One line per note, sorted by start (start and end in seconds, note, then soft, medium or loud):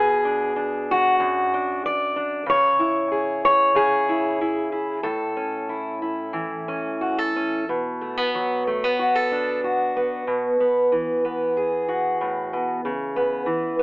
0.00 1.20 B2 medium
0.00 1.52 G#4 medium
0.25 0.55 D4 soft
0.56 1.52 D4 soft
0.91 1.85 F#4 loud
1.20 2.46 F#2 medium
1.54 2.15 D4 soft
1.86 2.48 D5 loud
2.16 2.44 D4 soft
2.46 3.74 C#3 medium
2.46 3.44 C#5 loud
2.79 4.07 E4 soft
3.12 3.75 G#4 soft
3.45 4.39 C#5 loud
3.75 4.99 C#3 medium
3.75 5.03 G#4 loud
4.09 4.39 E4 soft
4.41 4.71 E4 soft
4.72 4.99 E4 soft
5.03 7.63 A2 medium
5.03 7.01 A4 medium
5.37 6.67 C#4 soft
5.69 6.01 E4 soft
6.02 7.64 E4 soft
6.33 7.63 E3 medium
6.68 7.35 C#4 soft
7.01 7.18 F#4 soft
7.18 7.68 A4 soft
7.36 7.64 C#4 soft
7.69 10.26 B2 soft
8.01 8.17 A3 soft
8.17 8.66 B3 soft
8.35 10.24 F#3 soft
8.67 8.84 A3 soft
8.84 9.95 B3 soft
8.99 9.15 F#4 soft
9.15 9.63 A4 soft
9.32 10.24 D4 soft
9.64 11.56 F#4 soft
9.96 10.60 B3 soft
10.27 10.91 B2 medium
10.60 11.24 B3 soft
10.92 13.46 E3 soft
11.25 12.88 B3 soft
11.57 13.83 G#4 soft
11.88 12.80 F#4 soft
12.21 12.52 A2 soft
12.53 12.84 B2 soft
12.85 13.47 C#3 medium
13.16 13.79 B3 soft
13.46 13.83 E3 soft
13.79 13.83 B3 soft